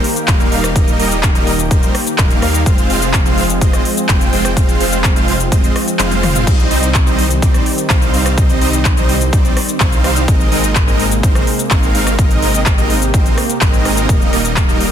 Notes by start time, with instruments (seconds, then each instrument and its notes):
Already playing: analog synth pad D#3 A#3 G4
0.04 open hi-hat
0.16 closed hi-hat, cabasa
0.28 detuned saw bass D#1, supersaw synth G3 A#3 D#4 A#4 F5, kick, clap, closed hi-hat, cabasa
0.40 closed hi-hat, cabasa
0.52 detuned saw bass D#1, supersaw synth G3 A#3 D#4 A#4 F5, open hi-hat
0.64 cross-stick, closed hi-hat, cabasa
0.76 detuned saw bass D#1, supersaw synth G3 A#3 D#4 A#4 D#5, kick, closed hi-hat, cabasa
0.88 closed hi-hat, cabasa
0.99 detuned saw bass D#1, supersaw synth G3 A#3 D#4 A#4 D#5, open hi-hat
1.11 closed hi-hat, cabasa
1.23 kick, clap, closed hi-hat, cabasa
1.35 detuned saw bass D#1, supersaw synth G3 A#3 D#4 A#4 D#5, closed hi-hat, cabasa
1.47 open hi-hat
1.59 closed hi-hat, cabasa
1.71 detuned saw bass D#1, supersaw synth G3 A#3 D#4 A#4 C5, kick, closed hi-hat, cabasa
1.83 closed hi-hat, cabasa
1.95 cross-stick, open hi-hat
2.07 closed hi-hat, cabasa
2.18 detuned saw bass D#1, supersaw synth G3 A#3 D#4 A#4 F5, kick, clap, closed hi-hat, cabasa
2.30 closed hi-hat, cabasa
2.42 detuned saw bass D#2, supersaw synth G3 A#3 D#4 A#4 F5, cross-stick, open hi-hat
2.54 closed hi-hat, cabasa
2.66 detuned saw bass F1, analog synth pad F3 G#3 C4, supersaw synth G#3 C4 F4 C5 F5, kick, closed hi-hat, cabasa
2.78 closed hi-hat, cabasa
2.90 detuned saw bass F1, supersaw synth G#3 C4 F4 C5 F5, open hi-hat
3.02 closed hi-hat, cabasa
3.14 kick, clap, closed hi-hat, cabasa
3.26 detuned saw bass F1, supersaw synth G#3 C4 F4 C5 F5, closed hi-hat, cabasa
3.38 open hi-hat
3.50 closed hi-hat, cabasa
3.61 detuned saw bass F1, supersaw synth G#3 C4 F4 C5 D#5, kick, closed hi-hat, cabasa
3.73 cross-stick, closed hi-hat, cabasa
3.85 open hi-hat
3.97 closed hi-hat, cabasa
4.09 detuned saw bass F1, supersaw synth G#3 C4 F4 C5 G5, kick, clap, closed hi-hat, cabasa
4.21 closed hi-hat, cabasa
4.33 detuned saw bass F1, supersaw synth G#3 C4 F4 C5 G5, open hi-hat
4.45 cross-stick, closed hi-hat, cabasa
4.57 detuned saw bass F1, supersaw synth G#3 C4 F4 C5 F5, kick, closed hi-hat, cabasa
4.69 closed hi-hat, cabasa
4.80 detuned saw bass F1, supersaw synth G#3 C4 F4 C5 F5, open hi-hat
4.92 closed hi-hat, cabasa
5.04 kick, clap, closed hi-hat, cabasa
5.16 detuned saw bass F1, supersaw synth G#3 C4 F4 C5 F5, closed hi-hat, cabasa
5.28 open hi-hat
5.40 closed hi-hat, cabasa
5.52 detuned saw bass F1, supersaw synth G#3 C4 F4 C5 D#5, kick, closed hi-hat, cabasa
5.64 closed hi-hat, cabasa
5.76 cross-stick, open hi-hat
5.88 closed hi-hat, cabasa
5.99 detuned saw bass F1, supersaw synth G#3 C4 F4 C5 F5, clap, closed hi-hat, high tom, cabasa
6.11 closed hi-hat, high tom, cabasa
6.23 cross-stick, open hi-hat, mid tom
6.35 closed hi-hat, mid tom, cabasa
6.47 detuned saw bass C2, analog synth pad D#3 G3 C4, supersaw synth G3 C4 D#4 C5 D#5, kick, closed hi-hat, crash, cabasa
6.59 cabasa
6.71 detuned saw bass C2, supersaw synth G3 C4 D#4 C5 D#5, open hi-hat
6.83 closed hi-hat, cabasa
6.95 kick, clap, closed hi-hat, cabasa
7.07 detuned saw bass C2, supersaw synth G3 C4 D#4 C5 D#5, cabasa
7.19 open hi-hat
7.30 closed hi-hat, cabasa
7.42 detuned saw bass C2, supersaw synth G3 C4 D#4 C5 D5, kick, closed hi-hat, cabasa
7.54 cross-stick, closed hi-hat, cabasa
7.66 open hi-hat
7.78 closed hi-hat, cabasa
7.90 detuned saw bass C2, supersaw synth G3 C4 D#4 C5 F5, kick, clap, closed hi-hat, cabasa
8.02 closed hi-hat, cabasa
8.14 detuned saw bass C2, supersaw synth G3 C4 D#4 C5 F5, open hi-hat
8.26 cross-stick, closed hi-hat, cabasa
8.37 detuned saw bass C2, supersaw synth G3 C4 D#4 C5 D#5, kick, closed hi-hat, cabasa
8.50 closed hi-hat, cabasa
8.61 detuned saw bass C2, supersaw synth G3 C4 D#4 C5 D#5, open hi-hat
8.73 closed hi-hat, cabasa
8.85 kick, clap, closed hi-hat, cabasa
8.97 detuned saw bass C2, supersaw synth G3 C4 D#4 C5 D#5, closed hi-hat, cabasa
9.09 open hi-hat
9.21 closed hi-hat, cabasa
9.33 detuned saw bass C2, supersaw synth G3 C4 D#4 C5 D5, kick, closed hi-hat, cabasa
9.45 closed hi-hat, cabasa
9.57 cross-stick, open hi-hat
9.69 closed hi-hat, cabasa
9.80 detuned saw bass C2, supersaw synth G3 C4 D#4 C5 F5, kick, clap, closed hi-hat, cabasa
9.92 closed hi-hat, cabasa
10.04 detuned saw bass C2, supersaw synth G3 C4 D#4 C5 F5, cross-stick, open hi-hat
10.16 closed hi-hat, cabasa
10.28 detuned saw bass G#1, analog synth pad C3 G#3 A#3, supersaw synth G#3 C4 D#4 A#4 D#5, kick, closed hi-hat, cabasa
10.40 cabasa
10.52 detuned saw bass G#1, supersaw synth G#3 C4 D#4 A#4 D#5, open hi-hat
10.64 closed hi-hat, cabasa
10.76 kick, clap, closed hi-hat, cabasa
10.88 detuned saw bass G#1, supersaw synth G#3 C4 D#4 A#4 D#5, cabasa
11.00 open hi-hat
11.11 closed hi-hat, cabasa
11.23 detuned saw bass G#1, supersaw synth G#3 C4 D#4 A#4 C5, kick, closed hi-hat, cabasa
11.35 cross-stick, closed hi-hat, cabasa
11.47 open hi-hat
11.59 closed hi-hat, cabasa
11.71 detuned saw bass G#1, supersaw synth G#3 C4 D#4 A#4 F5, kick, clap, closed hi-hat, cabasa
11.83 closed hi-hat, cabasa
11.95 detuned saw bass G#1, supersaw synth G#3 C4 D#4 A#4 F5, open hi-hat
12.07 cross-stick, closed hi-hat, cabasa
12.19 detuned saw bass G#1, supersaw synth G#3 C4 D#4 A#4 D#5, analog synth pad G4, kick, closed hi-hat, cabasa
12.31 closed hi-hat, cabasa
12.42 detuned saw bass G#1, supersaw synth G#3 C4 D#4 A#4 D#5, open hi-hat
12.54 closed hi-hat, cabasa
12.66 kick, clap, closed hi-hat, cabasa
12.78 detuned saw bass G#1, supersaw synth G#3 C4 D#4 A#4 D#5, closed hi-hat, cabasa
12.90 open hi-hat
13.02 closed hi-hat, cabasa
13.14 detuned saw bass G#1, supersaw synth G#3 C4 D#4 A#4 C5, kick, closed hi-hat, cabasa
13.26 closed hi-hat, cabasa
13.38 cross-stick, open hi-hat
13.50 closed hi-hat, cabasa
13.61 detuned saw bass G#1, supersaw synth G#3 C4 D#4 A#4 D#5, kick, clap, closed hi-hat, cabasa
13.73 closed hi-hat, cabasa
13.85 cross-stick, open hi-hat
13.97 closed hi-hat, cabasa
14.09 detuned saw bass D#1, analog synth pad D#3 G3, supersaw synth G3 A#3 D#4 A#4 D#5, kick, closed hi-hat, cabasa
14.21 cabasa
14.33 detuned saw bass D#1, supersaw synth G3 A#3 D#4 A#4 D#5, open hi-hat
14.45 closed hi-hat, cabasa
14.56 kick, clap, closed hi-hat, cabasa
14.69 detuned saw bass D#1, supersaw synth G3 A#3 D#4 A#4 D#5, cabasa
14.80 open hi-hat